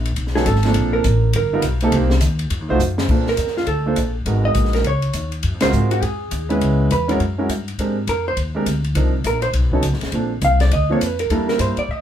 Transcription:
Already playing: upright bass A#1
0.05 ride
0.16 upright bass B1, kick, ride
0.27 snare
0.35 grand piano F#3 B3 C#4 D#4 A4, hollow-body jazz guitar G#4, snare
0.46 upright bass G#1, hollow-body jazz guitar A4, kick, hi-hat pedal, ride
0.55 snare
0.63 grand piano F3 A#3 C4 D4 A4, snare, ride
0.74 upright bass A#1, kick, ride
0.93 hollow-body jazz guitar A#4
1.04 upright bass A1, kick, hi-hat pedal, ride
1.33 upright bass G1, hollow-body jazz guitar A#4, kick, ride
1.53 grand piano G3 B3 D#4 F4 A#4
1.62 upright bass B1, kick, hi-hat pedal, ride
1.81 grand piano A#3 C4 D#4 G4 A4, ride
1.92 upright bass C2, grand piano A#3 C4 D#4 G4 C5, kick, ride
2.10 snare
2.21 upright bass D#2, kick, hi-hat pedal, ride
2.39 ride
2.50 upright bass F2, kick, ride
2.61 upright bass D#2
2.69 upright bass C2, grand piano A3 D#4 F4 F#4 C5
2.79 upright bass F#2, hi-hat pedal
2.98 snare
3.09 upright bass A#2, grand piano A#3 D4 F4 A4 C5, kick, crash
3.27 hollow-body jazz guitar A#4, snare
3.37 upright bass F2, kick, hi-hat pedal, ride
3.47 snare
3.57 hollow-body jazz guitar F4, snare
3.67 upright bass D2, hollow-body jazz guitar A4, kick, ride
3.86 grand piano A#3 D4 F4 A4 C5
3.96 upright bass A#1, kick, hi-hat pedal, ride
4.26 upright bass G#1, grand piano G#3 B3 D#4 F#4 A#4, kick, ride
4.45 hollow-body jazz guitar D#5
4.55 upright bass A#1, kick, hi-hat pedal, ride
4.65 snare
4.73 hollow-body jazz guitar A#4, snare, ride
4.84 upright bass C#2, hollow-body jazz guitar C#5, kick, ride
5.02 ride
5.13 upright bass D#2, kick, hi-hat pedal, ride
5.32 ride
5.43 upright bass F#2, kick, ride
5.54 upright bass F2
5.60 upright bass C#2, grand piano G#3 C4 F4 F#4 A#4, hollow-body jazz guitar C5, snare, ride
5.72 upright bass G#2, hi-hat pedal
5.91 hollow-body jazz guitar F#4, ride
6.02 upright bass F2, hollow-body jazz guitar G#4, kick, ride
6.31 upright bass D#2, kick, hi-hat pedal, ride
6.49 grand piano G#3 B3 C#4 E4 B4, ride
6.61 upright bass C#2, kick, ride
6.91 upright bass E2, hollow-body jazz guitar B4, kick, hi-hat pedal, ride
7.08 grand piano G#3 C#4 E4 F#4 A#4, hollow-body jazz guitar C#5, ride
7.20 upright bass F#2, kick, ride
7.38 grand piano G#3 C#4 E4 F#4 A#4
7.49 upright bass G2, kick, hi-hat pedal, ride
7.68 ride
7.78 upright bass G#2, grand piano G#3 C4 D4 G4 A#4, kick, ride
8.07 upright bass F2, hollow-body jazz guitar A#4, kick, hi-hat pedal, ride
8.28 hollow-body jazz guitar C5
8.37 upright bass D#2, kick, ride
8.55 grand piano G#3 C4 D4 G4 A#4
8.66 upright bass D2, kick, hi-hat pedal, ride
8.84 ride
8.95 upright bass C2, grand piano F3 C4 D4 D#4 A#4, kick, ride
9.24 upright bass A#1, hollow-body jazz guitar A#4, kick, hi-hat pedal, ride
9.42 hollow-body jazz guitar C5, ride
9.53 upright bass B1, kick, ride
9.72 grand piano F#3 B3 C#4 D#4 A4, kick
9.82 upright bass C#2, kick, hi-hat pedal, ride
9.93 upright bass B1, snare
10.01 upright bass A1, snare, ride
10.12 upright bass A#1, grand piano F3 A#3 C4 D4 A4, kick, ride
10.41 upright bass C2, hollow-body jazz guitar F5, kick, hi-hat pedal, ride
10.60 hollow-body jazz guitar D5, snare, ride
10.71 upright bass D2, hollow-body jazz guitar D#5, kick, ride
10.90 grand piano F3 A#3 C4 D4 A4, hollow-body jazz guitar C#5
11.01 upright bass F2, hollow-body jazz guitar B4, kick, hi-hat pedal, ride
11.19 hollow-body jazz guitar A#4, ride
11.30 upright bass E2, grand piano G3 A#3 D4 E4 A#4, hollow-body jazz guitar A4, kick, ride
11.48 hollow-body jazz guitar A#4, snare
11.59 upright bass G2, hollow-body jazz guitar C5, kick, hi-hat pedal, ride
11.77 hollow-body jazz guitar D5, muted upright bass stroke, ride
11.88 upright bass A2, hollow-body jazz guitar D#5

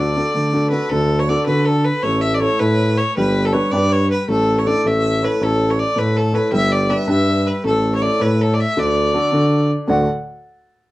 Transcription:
Already playing: tuba D2, upright piano D3 D4, fiddle D5
0.00 upright piano F#4 A4
0.17 upright piano D4 F#4 A4
0.35 tuba D3, upright piano A3
0.53 upright piano D4 F#4 A4
0.70 upright piano D4 F#4 A4, fiddle B4
0.89 tuba D2, upright piano D3, fiddle A4
1.19 fiddle C#5
1.29 upright piano D4 F#4 A4, fiddle D5
1.46 tuba D3, upright piano D4 F#4 A4, fiddle B4
1.65 fiddle A4
1.84 fiddle B4
2.03 tuba A1, upright piano A3, fiddle C#5
2.21 fiddle E5
2.34 fiddle D5
2.39 upright piano E4 A4 C#5, fiddle C#5
2.59 tuba A2, upright piano E4 A4 C#5, fiddle B4
2.97 fiddle C#5
3.16 tuba G1, upright piano G3, fiddle B4
3.45 fiddle A4
3.52 upright piano D4 G4 B4, fiddle C#5
3.71 tuba G2, upright piano D4 G4 B4, fiddle D5
3.92 fiddle C#5
4.10 fiddle B4
4.28 tuba A1, upright piano A3, fiddle A4
4.58 fiddle C#5
4.65 upright piano D4 E4 A4, fiddle D5
4.84 tuba A1, upright piano A3, fiddle E5
5.22 upright piano E4 A4 C#5, fiddle B4
5.41 tuba A1, upright piano E4 A4 C#5, fiddle A4
5.70 fiddle C#5
5.79 fiddle D5
5.96 tuba A2, upright piano A3, fiddle B4
6.17 fiddle A4
6.33 upright piano E4 A4 C#5, fiddle B4
6.52 tuba G1, upright piano G3, fiddle E5
6.72 fiddle D5
6.89 upright piano D4 G4 B4, fiddle E5
7.07 tuba G2, upright piano D4 G4 B4, fiddle E5
7.47 fiddle B4
7.64 tuba A1, upright piano A3, fiddle A4
7.95 fiddle C#5
8.01 upright piano E4 A4 C#5, fiddle D5
8.19 tuba A2, upright piano E4 A4 C#5, fiddle B4
8.41 fiddle A4
8.54 fiddle D5
8.60 fiddle E5
8.77 tuba D2, upright piano D3, fiddle D5
9.14 upright piano D4 F#4 A4
9.32 tuba D3, upright piano D4 F#4 A4
9.88 upright piano D2 A2 D3 A3 F#4 D5, tuba D2, fiddle F#5

